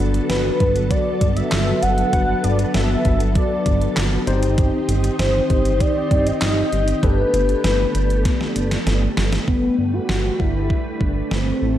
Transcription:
Already playing: D3 F#3 B3 D4 F#4 A4 B4
0.00 G1
0.14 closed hi-hat
0.29 G1 B4, snare, closed hi-hat
0.60 G1, kick, closed hi-hat
0.76 closed hi-hat
0.90 D5, kick, closed hi-hat
1.21 G1, kick, closed hi-hat
1.36 E5, closed hi-hat
1.52 G1, snare, clap, closed hi-hat
1.82 G1 F#5, closed hi-hat
1.98 closed hi-hat
2.13 G1 B3 D4 F#4 B4 F#5, kick, closed hi-hat
2.43 G1 D5, closed hi-hat
2.59 closed hi-hat
2.74 G1 E5, snare, closed hi-hat
3.05 G1, kick, closed hi-hat
3.20 closed hi-hat
3.35 D5, kick, closed hi-hat
3.66 G1, kick, closed hi-hat
3.81 closed hi-hat
3.97 G1, snare, clap, closed hi-hat
4.27 G1 D#3 C4 D#4 G4 C5, closed hi-hat
4.43 closed hi-hat
4.58 kick, closed hi-hat
4.89 G1, closed hi-hat
5.04 closed hi-hat
5.19 G1 C5, snare, closed hi-hat
5.50 G1, kick, closed hi-hat
5.65 closed hi-hat
5.80 D5, kick, closed hi-hat
6.11 G1, kick, closed hi-hat
6.27 D#5, closed hi-hat
6.42 G1, snare, clap, closed hi-hat
6.72 G1, closed hi-hat
6.88 closed hi-hat
7.03 G1 D3 A3 B3 D4 G4 A4 B4, kick, closed hi-hat
7.34 G1, closed hi-hat
7.49 closed hi-hat
7.64 G1, snare, closed hi-hat
7.95 G1, closed hi-hat
8.10 closed hi-hat
8.25 kick, snare, closed hi-hat
8.41 snare
8.56 G1, closed hi-hat
8.71 snare, closed hi-hat
8.86 G1, snare, closed hi-hat
9.17 G1, snare, closed hi-hat
9.32 snare, closed hi-hat
9.47 G1 D3 G3 A3 B3 B4, kick
9.78 G1
9.93 F#4
10.09 G1, snare
10.39 G1 E4, kick
10.70 kick
11.01 G1 D4, kick
11.31 G1 C4, snare
11.62 A1 C3 E3 E4

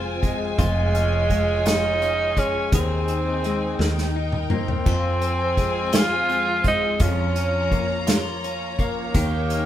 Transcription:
Already playing: F1 F2 G#3 C4 F4 C5 G#5
0.23 G#3, kick, closed hi-hat
0.58 F1 F3 F4 C#5, kick, closed hi-hat
0.95 C#4, closed hi-hat
1.30 G#3, kick, closed hi-hat
1.66 D#4 F4, snare, closed hi-hat
2.02 C#4, closed hi-hat
2.37 G#3 C#4, kick, closed hi-hat
2.72 D#2 D#3 C4 D#4 G#4 C5, kick, closed hi-hat
3.08 C4, closed hi-hat
3.44 G#3, closed hi-hat
3.79 D#2 D#3 A#4 G5, snare
3.98 snare
4.16 D#4
4.32 mid tom
4.50 A#3 C4, mid tom
4.68 floor tom
4.86 F2 F4 C5 G#5, kick, splash
5.21 C4, closed hi-hat
5.57 G#3, kick, closed hi-hat
5.93 F4, snare, closed hi-hat
6.29 C4, closed hi-hat
6.64 G#3 D#4, kick, closed hi-hat
7.00 F2 F3 C#4 F4 C#5 A#5, kick, closed hi-hat
7.36 C#4, closed hi-hat
7.72 A#3, kick, closed hi-hat
8.07 F4, snare, closed hi-hat
8.44 C#4, closed hi-hat
8.79 A#3, kick, closed hi-hat
9.14 D#2 D#3 D#4 G4 G5, kick, closed hi-hat
9.50 C#4, closed hi-hat

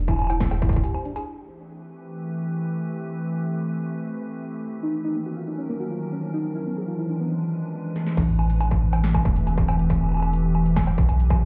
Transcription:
Already playing: E1
0.08 E4, kick, high bongo
0.11 high bongo
0.14 high bongo
0.16 closed hi-hat, high bongo
0.19 high bongo
0.22 high bongo
0.24 high bongo
0.27 E4, closed hi-hat, cowbell, high bongo
0.30 high bongo
0.40 C4, kick, snare, closed hi-hat
0.51 G#4, cowbell
0.62 E4, kick, closed hi-hat
0.69 E4, kick, closed hi-hat
0.76 kick
0.84 G4, closed hi-hat, high bongo
0.94 C5, high bongo
1.05 D4, closed hi-hat
1.16 G#4, closed hi-hat, high bongo
1.27 E3
1.38 A3 C4 G4
1.50 B4
4.72 D#3
4.80 C#4 D#4
4.89 F#3
5.04 D#4
5.15 F3 A#3
5.26 F#4
5.37 F4
5.46 D#4 A#4
5.58 C#4
5.69 A#3
5.80 F#4
5.91 F4
6.12 C#4
6.34 D#4
6.45 E3
6.55 E4
6.63 G#3 B3
6.77 D4 G#4
6.85 F4 B4
6.99 E4
7.09 D4
7.20 B3
7.96 snare
8.07 snare
8.17 A1 A3, kick, closed hi-hat, crash
8.39 high bongo
8.50 C4, closed hi-hat
8.61 closed hi-hat, high bongo
8.71 G4, kick
8.93 closed hi-hat, cowbell, high bongo
9.04 snare, closed hi-hat
9.14 kick, high bongo
9.25 E1, kick, closed hi-hat
9.36 closed hi-hat
9.47 closed hi-hat, high bongo
9.58 kick
9.68 cowbell, high bongo
9.79 closed hi-hat
9.90 kick, closed hi-hat
10.01 high bongo
10.04 high bongo
10.06 high bongo
10.09 high bongo
10.12 high bongo
10.14 high bongo
10.17 high bongo
10.20 closed hi-hat, high bongo
10.22 high bongo
10.33 closed hi-hat
10.55 high bongo
10.66 closed hi-hat
10.76 kick, snare, closed hi-hat, high bongo
10.87 cowbell
10.98 B1, kick, closed hi-hat
11.09 closed hi-hat, high bongo
11.20 closed hi-hat
11.30 kick, high bongo

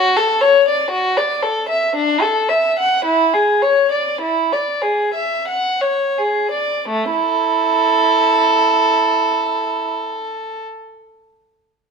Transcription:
Already playing: F#4
0.17 A4
0.41 C#5
0.68 D5
0.90 F#4
1.17 D5
1.43 A4
1.69 E5
1.95 D4
2.22 A4
2.49 E5
2.79 F#5
3.05 E4
3.33 G#4
3.62 C#5
3.91 D5
4.21 E4
4.52 D5
4.82 G#4
5.14 E5
5.48 F#5
5.81 C#5
6.18 G#4
6.51 D5
6.88 A3
7.11 E4 A4

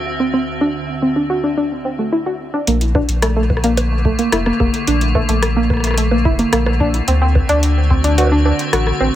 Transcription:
Already playing: D2 D3 C4 F#4 E5
0.20 C4
0.34 C4
0.61 D4
1.02 C4
1.16 D4
1.30 F#4
1.44 D4
1.57 D4
1.85 C4
1.99 A3
2.12 E4
2.26 F#4
2.54 D4
2.67 A#1 D3 A3 A#3, closed hi-hat
2.81 closed hi-hat
2.95 D4, kick, high bongo
3.09 A#1, closed hi-hat
3.22 A3, cross-stick, closed hi-hat
3.36 A3
3.50 kick, high bongo
3.57 cross-stick
3.64 A#3, closed hi-hat
3.77 closed hi-hat, high bongo
4.05 A3, kick
4.19 A#3, closed hi-hat
4.32 F1 E4, cross-stick, closed hi-hat
4.46 A#3, cross-stick
4.60 F1 A#3, kick, high bongo
4.74 closed hi-hat
4.87 A#1 D4, closed hi-hat
5.01 closed hi-hat
5.15 A3, kick, high bongo
5.29 A#1 A3, closed hi-hat
5.42 cross-stick, closed hi-hat
5.57 A#3
5.70 kick, cross-stick, high bongo
5.73 cross-stick
5.77 cross-stick
5.80 cross-stick
5.84 cross-stick, closed hi-hat
5.87 cross-stick
5.91 cross-stick
5.94 A3, cross-stick, closed hi-hat
6.11 A#3, high bongo
6.25 F1 E4, kick
6.39 A#3, closed hi-hat
6.53 A#1 A#3, cross-stick, closed hi-hat
6.66 cross-stick, high bongo
6.80 D4, kick
6.94 closed hi-hat
7.08 D2 A3 C4 F#4, closed hi-hat
7.22 C4
7.35 kick, high bongo
7.49 D2 D4, closed hi-hat
7.63 closed hi-hat
7.90 C4, kick
8.04 D4, closed hi-hat
8.18 F#4, closed hi-hat, high bongo
8.20 high bongo
8.22 high bongo
8.25 high bongo
8.27 high bongo
8.29 D4, high bongo
8.45 D4, high bongo
8.59 closed hi-hat
8.73 A1 F#4, cross-stick, closed hi-hat
8.87 cross-stick
9.00 A1 C4, high bongo

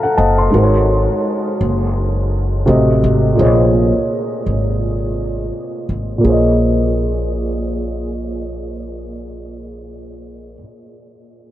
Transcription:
Already playing: F3 C4 F#4 A4 F5 A5 A#5
0.03 A4 F#5
0.17 F#1 C5 D#5 A5
0.38 D#5 C6
0.50 G#1 G#3 D#4 F#4
0.55 A#4 C5
0.63 C#5
1.61 F#1
2.66 A1 C3 A3 F#4 C5 D#5
3.04 G#1
3.35 A#1 A#2 A#3 G#4
3.39 C5 C#5 D#5
4.46 G#1
5.89 G#1
6.18 A#2 A#3
6.23 A#1 G#4 C5
6.29 C#5 D#5

